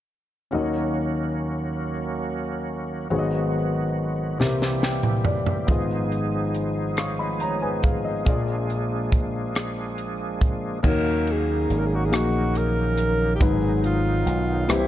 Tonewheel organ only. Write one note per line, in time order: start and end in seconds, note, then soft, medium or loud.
0.52 3.08 D#3 soft
0.52 4.35 F#3 soft
0.52 3.08 A#3 soft
0.52 3.08 C#4 soft
0.52 3.08 F#4 soft
3.11 4.39 D#3 soft
3.11 4.39 G#3 soft
3.11 4.38 B3 soft
3.11 4.38 F#4 soft
4.40 5.67 E3 soft
4.40 5.67 G3 soft
4.40 5.67 A#3 soft
4.40 5.67 C4 soft
4.40 5.67 G4 soft
5.68 8.24 G#2 soft
5.68 10.79 F3 soft
5.68 8.23 G#3 soft
5.68 8.23 B3 soft
5.68 8.23 D#4 soft
5.68 10.79 G#4 medium
8.25 10.81 G#3 soft
8.25 10.81 A#3 soft
8.25 10.81 D4 soft
10.83 14.65 D#3 soft
10.83 14.65 F#3 soft
10.83 13.38 A#3 soft
10.83 13.38 C#4 soft
10.83 14.65 D#4 medium
13.41 14.68 G#3 soft
13.41 14.68 B3 soft
14.70 14.88 E3 soft
14.70 14.88 G3 soft
14.70 14.88 A#3 soft
14.70 14.88 C4 soft
14.70 14.88 G4 medium